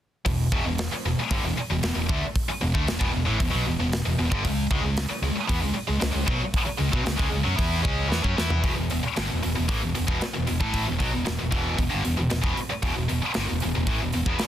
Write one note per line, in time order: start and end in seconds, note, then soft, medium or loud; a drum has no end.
0.25 0.50 E1 medium
0.25 0.47 E2 medium
0.25 0.47 B2 medium
0.25 kick medium
0.25 open hi-hat medium
0.52 0.64 E1 medium
0.52 0.65 E2 medium
0.52 0.65 B2 medium
0.52 kick loud
0.65 0.90 E1 medium
0.65 0.87 E2 medium
0.65 0.87 B2 medium
0.78 snare loud
0.78 open hi-hat medium
0.93 muted distorted electric guitar stroke medium
0.93 muted fingered electric bass stroke soft
1.05 1.17 E1 medium
1.05 1.18 E2 medium
1.05 1.18 B2 medium
1.18 muted fingered electric bass stroke soft
1.18 muted distorted electric guitar stroke medium
1.30 1.43 G1 medium
1.30 1.43 G2 medium
1.30 1.44 D3 loud
1.30 kick loud
1.30 open hi-hat medium
1.43 1.56 E1 medium
1.43 1.56 E2 medium
1.43 1.58 B2 medium
1.57 muted fingered electric bass stroke soft
1.57 muted distorted electric guitar stroke medium
1.69 1.82 E1 medium
1.69 1.82 E2 medium
1.69 1.82 B2 medium
1.83 1.95 E1 medium
1.83 1.94 E2 medium
1.83 1.95 B2 medium
1.83 snare loud
1.83 open hi-hat medium
1.95 2.08 E1 medium
1.95 2.09 E2 medium
1.95 2.08 B2 medium
2.09 2.22 D2 medium
2.09 2.21 D3 medium
2.09 2.22 A3 medium
2.09 kick loud
2.36 kick loud
2.36 open hi-hat medium
2.49 muted fingered electric bass stroke soft
2.49 muted distorted electric guitar stroke medium
2.61 2.74 E1 medium
2.61 2.75 E2 medium
2.61 2.74 B2 medium
2.74 2.87 D2 medium
2.74 2.87 D3 medium
2.74 2.87 A3 medium
2.74 kick medium
2.87 3.01 E1 medium
2.87 2.98 E2 medium
2.87 2.99 B2 medium
2.87 snare loud
2.87 open hi-hat medium
2.99 3.14 E1 medium
2.99 3.11 E2 medium
2.99 3.12 B2 medium
2.99 kick medium
3.12 3.27 E1 medium
3.12 3.26 E2 medium
3.12 3.25 B2 medium
3.25 3.39 A1 medium
3.25 3.38 A2 medium
3.25 3.39 E3 loud
3.39 3.52 E1 medium
3.39 3.53 E2 medium
3.39 3.49 B2 medium
3.39 kick medium
3.39 open hi-hat medium
3.50 3.64 B2 medium
3.50 3.64 F#3 loud
3.55 3.66 B1 medium
3.66 3.79 E1 medium
3.66 3.79 E2 medium
3.66 3.79 B2 medium
3.79 4.04 E1 medium
3.79 4.01 E2 medium
3.79 4.01 B2 medium
3.92 snare loud
3.92 open hi-hat soft
4.05 4.18 E1 medium
4.05 4.17 E2 medium
4.05 4.18 B2 medium
4.19 4.31 E1 medium
4.19 4.31 E2 medium
4.19 4.32 B2 medium
4.31 4.44 G1 medium
4.31 4.44 G2 medium
4.31 4.44 D3 loud
4.31 kick loud
4.45 4.69 C#2 medium
4.45 4.66 C#3 medium
4.45 4.66 G#3 medium
4.45 kick medium
4.45 open hi-hat medium
4.70 4.83 C#2 medium
4.70 4.82 C#3 medium
4.70 4.83 G#3 medium
4.70 kick loud
4.83 5.08 C#2 medium
4.83 5.05 C#3 medium
4.83 5.05 G#3 medium
4.97 snare loud
4.97 open hi-hat medium
5.10 muted fingered electric bass stroke soft
5.10 muted distorted electric guitar stroke medium
5.22 5.34 C#2 medium
5.22 5.34 C#3 medium
5.22 5.37 G#3 medium
5.35 muted fingered electric bass stroke soft
5.35 muted distorted electric guitar stroke medium
5.48 5.60 E2 medium
5.48 5.60 E3 medium
5.48 5.61 B3 loud
5.48 kick loud
5.48 open hi-hat medium
5.61 5.74 C#2 medium
5.61 5.73 C#3 medium
5.61 5.75 G#3 medium
5.74 muted distorted electric guitar stroke medium
5.74 muted fingered electric bass stroke soft
5.88 6.01 C#2 medium
5.88 5.99 C#3 medium
5.88 5.99 G#3 medium
6.00 6.14 C#2 medium
6.00 6.11 C#3 medium
6.00 6.12 G#3 medium
6.00 snare loud
6.00 open hi-hat medium
6.12 6.27 C#2 medium
6.12 6.26 C#3 medium
6.12 6.27 G#3 medium
6.26 6.40 B1 medium
6.26 6.39 B2 medium
6.26 6.40 F#3 medium
6.26 kick loud
6.54 kick loud
6.54 open hi-hat medium
6.66 muted distorted electric guitar stroke medium
6.66 muted fingered electric bass stroke soft
6.78 6.92 C#2 medium
6.78 6.92 C#3 medium
6.78 6.92 G#3 medium
6.92 7.06 B1 medium
6.92 7.04 B2 medium
6.92 7.05 F#3 medium
6.92 kick loud
7.05 7.19 C#2 medium
7.05 7.16 C#3 medium
7.05 7.17 G#3 medium
7.05 snare loud
7.05 open hi-hat medium
7.17 7.31 C#2 medium
7.17 7.29 C#3 medium
7.17 7.29 G#3 medium
7.17 kick medium
7.30 7.44 C#2 medium
7.30 7.43 C#3 medium
7.30 7.45 G#3 medium
7.44 7.58 F#2 medium
7.44 7.56 F#3 medium
7.44 7.56 C#4 loud
7.56 7.83 E2 medium
7.56 7.82 E3 medium
7.56 7.82 B3 loud
7.56 7.83 E4 medium
7.56 kick loud
7.56 open hi-hat medium
7.82 8.10 C#2 medium
7.82 8.08 C#3 medium
7.82 8.09 G#3 medium
7.82 8.10 C#4 medium
7.82 kick loud
8.08 8.24 E2 medium
8.08 8.22 E3 medium
8.08 8.22 B3 medium
8.08 snare medium
8.23 8.37 F#2 medium
8.23 8.36 F#3 medium
8.23 8.36 C#4 loud
8.23 kick medium
8.36 8.63 E2 medium
8.36 8.62 E3 medium
8.36 8.63 B3 medium
8.36 8.63 E4 medium
8.36 snare medium
8.50 floor tom medium
8.62 8.76 E1 medium
8.62 8.74 E2 medium
8.62 8.75 B2 medium
8.62 kick loud
8.62 open hi-hat medium
8.76 8.90 E1 medium
8.76 8.89 E2 medium
8.76 8.89 B2 medium
8.90 9.03 E1 medium
8.90 9.02 E2 medium
8.90 9.04 B2 medium
8.90 open hi-hat medium
9.03 muted distorted electric guitar stroke soft
9.03 muted fingered electric bass stroke soft
9.16 9.29 G1 medium
9.16 9.29 G2 medium
9.16 9.29 D3 medium
9.16 snare loud
9.16 open hi-hat medium
9.30 9.43 E1 medium
9.30 9.41 E2 soft
9.30 9.42 B2 medium
9.43 9.56 E1 medium
9.43 9.54 E2 medium
9.43 9.54 B2 medium
9.43 open hi-hat medium
9.55 9.68 E1 medium
9.55 9.69 E2 medium
9.55 9.68 B2 medium
9.68 9.81 A1 medium
9.68 9.81 A2 medium
9.68 9.81 E3 medium
9.68 kick loud
9.68 open hi-hat medium
9.81 9.95 E1 medium
9.81 9.93 E2 medium
9.81 9.94 B2 medium
9.95 10.08 E1 medium
9.95 10.06 E2 medium
9.95 10.07 B2 medium
9.95 open hi-hat medium
10.07 10.20 E1 medium
10.07 10.20 E2 medium
10.07 10.20 B2 medium
10.07 kick loud
10.21 muted distorted electric guitar stroke medium
10.21 snare medium
10.21 open hi-hat medium
10.25 muted fingered electric bass stroke soft
10.34 10.48 E1 medium
10.34 10.46 E2 medium
10.34 10.47 B2 medium
10.47 10.60 E1 medium
10.47 10.60 E2 medium
10.47 10.60 B2 medium
10.47 open hi-hat soft
10.60 10.85 A1 medium
10.60 10.86 A2 medium
10.60 10.86 E3 medium
10.60 10.86 A3 loud
10.60 kick medium
10.74 kick medium
10.74 open hi-hat medium
10.86 10.99 E1 medium
10.86 11.00 E2 medium
10.86 10.98 B2 medium
10.99 11.12 B1 medium
10.99 11.11 B2 medium
10.99 11.12 F#3 medium
10.99 kick loud
10.99 open hi-hat medium
11.12 11.27 E1 medium
11.12 11.24 E2 medium
11.12 11.25 B2 medium
11.25 11.39 E1 medium
11.25 11.38 E2 medium
11.25 11.38 B2 medium
11.25 snare medium
11.25 open hi-hat medium
11.39 11.52 E1 medium
11.39 11.50 E2 medium
11.39 11.51 B2 medium
11.51 11.76 E1 medium
11.51 11.76 E2 medium
11.51 11.77 B2 medium
11.51 11.77 E3 medium
11.51 kick medium
11.51 open hi-hat soft
11.77 11.90 E1 medium
11.77 11.89 E2 medium
11.77 11.90 B2 medium
11.77 kick medium
11.77 open hi-hat medium
11.89 12.03 G2 medium
11.89 12.03 D3 medium
11.93 12.05 G1 medium
12.04 12.17 E1 medium
12.04 12.16 E2 medium
12.04 12.17 B2 medium
12.04 open hi-hat medium
12.17 12.30 E1 medium
12.17 12.29 E2 medium
12.17 12.29 B2 medium
12.30 12.43 E1 medium
12.30 12.40 E2 medium
12.30 12.42 B2 medium
12.30 snare loud
12.30 open hi-hat medium
12.42 12.56 E1 medium
12.42 12.55 E2 medium
12.42 12.56 B2 medium
12.42 kick loud
12.56 muted distorted electric guitar stroke medium
12.56 muted fingered electric bass stroke soft
12.56 open hi-hat soft
12.70 muted distorted electric guitar stroke medium
12.70 muted fingered electric bass stroke soft
12.83 12.95 E1 medium
12.83 12.94 E2 medium
12.83 12.95 B2 loud
12.83 kick loud
12.83 open hi-hat medium
12.95 13.09 E1 medium
12.95 13.07 E2 medium
12.95 13.08 B2 medium
13.09 13.22 E1 medium
13.09 13.21 E2 medium
13.09 13.22 B2 medium
13.09 open hi-hat soft
13.22 muted distorted electric guitar stroke soft
13.22 muted fingered electric bass stroke soft
13.34 13.48 G1 medium
13.34 13.47 G2 medium
13.34 13.47 D3 loud
13.34 snare loud
13.34 open hi-hat medium
13.49 13.62 E1 medium
13.49 13.61 E2 medium
13.49 13.61 B2 medium
13.60 13.74 E2 medium
13.60 13.74 B2 medium
13.60 open hi-hat soft
13.64 13.75 E1 medium
13.75 13.87 E1 medium
13.75 13.88 E2 medium
13.75 13.88 B2 medium
13.87 13.99 A1 medium
13.87 14.00 A2 medium
13.87 14.00 E3 medium
13.87 kick loud
13.87 open hi-hat medium
14.01 14.13 E1 medium
14.01 14.12 E2 medium
14.01 14.13 B2 medium
14.13 14.26 E1 medium
14.13 14.26 E2 medium
14.13 14.26 B2 medium
14.13 open hi-hat medium
14.26 14.39 E1 medium
14.26 14.39 E2 medium
14.26 14.39 B2 loud
14.26 kick medium
14.39 muted fingered electric bass stroke soft
14.39 muted distorted electric guitar stroke medium
14.39 snare medium
14.39 open hi-hat medium